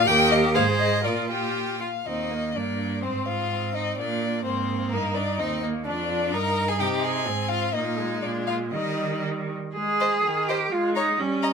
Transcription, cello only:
0.07 0.57 D#2 medium
0.56 1.07 G#2 medium
1.06 1.86 A#2 medium
2.07 2.57 D#2 soft
2.56 3.05 G2 soft
3.04 3.98 G#2 soft
3.99 4.45 A#2 soft
4.46 4.94 G#2 soft
4.93 5.41 G2 soft
5.40 5.89 D#2 soft
5.87 6.35 F2 medium
6.34 6.82 G2 medium
6.81 7.29 C3 medium
7.27 7.74 G#2 medium
7.74 8.22 A#2 soft
8.23 8.75 A#2 soft
8.74 9.55 D#3 medium
9.75 10.50 G#4 medium
10.49 10.74 G4 medium
10.72 10.96 F4 medium
10.96 11.21 D#4 medium
11.19 11.53 C#4 medium

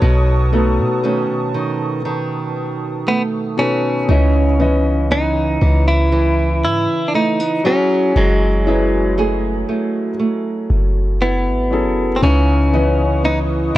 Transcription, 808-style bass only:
0.02 0.80 B1 loud
0.79 1.27 B2 loud
4.09 5.57 C#2 loud
5.62 6.65 C#2 loud
6.64 6.87 G#2 medium
8.16 9.64 F#1 loud
10.70 11.48 F#1 loud
11.47 11.86 G#1 loud
11.84 12.21 F#1 loud
12.23 13.71 C#2 loud

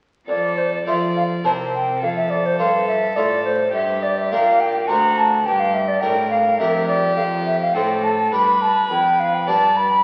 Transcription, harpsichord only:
0.28 0.83 F2 soft
0.87 1.41 F3 soft
0.87 1.29 F4 soft
0.87 1.29 A4 soft
0.87 1.29 C5 soft
1.44 1.98 C3 soft
1.44 1.98 E4 soft
1.44 1.98 A#4 soft
1.44 1.98 C5 soft
2.02 2.55 F2 soft
2.59 3.13 G2 soft
2.59 3.01 F4 soft
2.59 3.01 A4 soft
2.59 3.01 C5 soft
3.16 3.70 A2 soft
3.16 3.58 F4 soft
3.16 3.58 A4 soft
3.16 3.59 C5 soft
3.74 4.28 G2 soft
4.32 4.85 A#2 soft
4.32 4.73 D4 soft
4.32 4.73 G4 soft
4.32 4.74 A#4 soft
4.88 5.42 D2 soft
4.88 5.42 D4 soft
4.88 5.42 F#4 soft
4.88 5.42 C5 soft
5.45 5.98 G2 soft
6.02 6.55 A2 soft
6.02 6.43 D4 soft
6.02 6.44 G4 soft
6.02 6.44 A#4 soft
6.60 7.13 F2 soft
6.60 7.01 D4 soft
6.60 7.02 G4 soft
6.60 7.02 A#4 soft
7.17 7.70 F2 soft
7.75 8.28 A2 medium
7.75 8.17 D4 soft
7.75 8.17 A4 soft
7.75 8.17 C5 soft
8.32 8.86 G2 soft
8.32 8.86 D4 soft
8.32 8.86 G4 soft
8.32 8.87 B4 soft
8.90 9.44 F2 soft
9.48 10.02 G2 soft
9.48 9.89 D4 soft
9.48 9.89 G4 soft
9.48 9.90 B4 soft

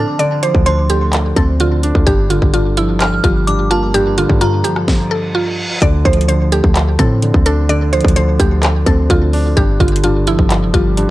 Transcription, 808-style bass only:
0.55 1.33 D2 loud
1.36 1.93 D2 loud
1.95 2.06 D2 loud
2.07 2.40 G1 loud
2.42 3.21 G1 loud
3.24 4.25 G1 loud
4.29 4.63 G2 loud
5.82 6.04 D2 loud
6.05 6.61 D2 loud
6.64 6.98 D2 loud
6.99 7.33 A2 loud
7.34 8.02 D2 loud
8.05 8.38 D2 loud
8.40 8.85 D2 loud
8.86 9.09 D2 loud
9.10 9.55 D2 loud
9.57 9.79 G1 loud
9.80 10.36 G1 loud
10.39 10.64 G1 loud
10.62 10.73 F1 loud
10.74 11.08 G1 loud

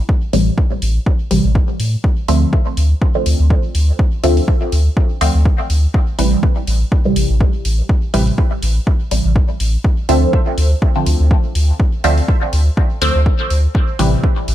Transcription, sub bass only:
0.33 0.50 A1 medium
0.82 0.99 A1 loud
1.31 1.40 A1 loud
1.44 1.59 A1 loud
1.80 1.96 A2 medium
2.28 2.45 D2 loud
2.77 2.94 D2 loud
3.26 3.35 D2 loud
3.39 3.54 D2 loud
3.75 3.91 D2 medium
4.23 4.40 D2 medium
4.72 4.89 D2 loud
5.21 5.30 D2 loud
5.35 5.49 D2 loud
5.70 5.87 D2 medium
6.19 6.35 A1 loud
6.67 6.84 A1 loud
7.16 7.25 A1 loud
7.30 7.45 A1 loud
7.65 7.82 A1 medium
8.14 8.30 A1 medium
8.62 8.79 A1 loud
9.11 9.20 A1 loud
9.25 9.40 A1 loud
9.60 9.77 A1 medium
10.09 10.26 D2 loud
10.58 10.74 D2 loud
11.06 11.15 D2 loud
11.20 11.35 D2 loud
11.55 11.72 D2 medium
12.04 12.21 D2 medium
12.53 12.70 D2 loud
13.02 13.10 D2 loud
13.15 13.30 D2 loud
13.50 13.67 D2 medium
13.99 14.16 A1 medium
14.48 14.55 A1 loud

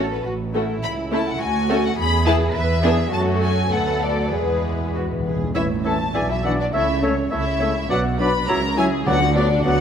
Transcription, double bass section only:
0.00 0.16 A1 medium
0.25 0.73 A1 medium
0.83 1.31 C#2 medium
1.40 1.88 D2 medium
1.98 2.45 E2 medium
2.55 3.03 E2 medium
3.13 3.68 F#2 medium
3.72 4.33 D2 medium
4.32 5.35 E2 medium
5.55 6.08 A1 medium
6.15 6.67 B1 medium
6.73 7.25 C#2 medium
7.32 7.83 C#2 medium
7.90 8.42 B1 medium
8.49 9.00 C#2 medium
9.07 9.58 D2 medium
9.65 9.80 D2 medium

